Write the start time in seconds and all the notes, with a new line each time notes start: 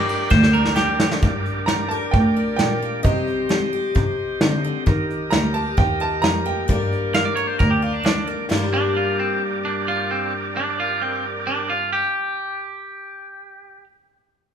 Already playing: G3 D4 G4 A#4 D5 D#5
0.09 D5, ride
0.30 D2 D3 C5, kick, snare
0.43 snare
0.53 D4 A#4
0.65 snare
0.76 G3 G4 A#4, snare
1.00 D4, snare
1.11 snare
1.20 G2 G4 A#4 D5, kick, closed hi-hat
1.46 closed hi-hat
1.66 G3 A#5, snare, closed hi-hat
1.89 A#4 A5
2.11 A2 D3 G5, kick, closed hi-hat
2.37 D4
2.56 A#2 G3 G5, snare, closed hi-hat
2.82 A#3
3.03 C3 G3 C4 D#4 G4 C5 D#5, kick, closed hi-hat
3.27 closed hi-hat
3.49 G3, snare, closed hi-hat
3.73 G4
3.95 G2 C3, kick, closed hi-hat
4.41 C3 D3, snare, closed hi-hat
4.65 D3
4.84 D#3 G4 A#4 D#5, kick, closed hi-hat
5.10 closed hi-hat
5.31 D2 G3 A#5, snare, closed hi-hat
5.54 G4 A5
5.77 D#2 A#2 G5, kick, closed hi-hat
6.00 D#4 A5
6.22 F2 G3 A#5, snare, closed hi-hat
6.46 A#3 G5
6.66 G2 G3 A#3 D4 G4 A#4 D5, kick, closed hi-hat
6.71 A#4
6.92 closed hi-hat
7.14 G3 F5, snare, closed hi-hat
7.25 D5
7.36 A#4 C#5
7.47 C5
7.59 D2 D3 A#4, kick, closed hi-hat
7.70 G4
7.82 D4 F4
7.93 D4
8.03 G3 D4, snare, closed hi-hat
8.27 A#3
8.50 G2 G3 G4 A#4 D5, snare, china
8.54 A#3 D4
8.58 A#4
8.74 D4
8.97 F4
9.19 C4
9.65 D4
9.88 F4
10.11 C4
10.57 D4
10.80 F4
11.02 C4
11.47 D4
11.70 F4
11.93 G4